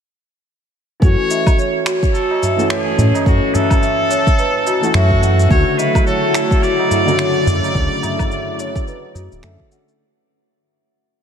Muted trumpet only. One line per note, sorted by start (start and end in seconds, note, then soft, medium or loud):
1.02 1.82 C#5 loud
2.14 2.66 A4 medium
2.70 3.22 G#4 medium
3.26 3.55 F#4 medium
3.54 4.94 A4 loud
4.94 5.46 F#4 medium
5.50 5.80 C#5 loud
5.78 6.06 B4 medium
6.07 6.65 A4 loud
6.63 9.43 D5 loud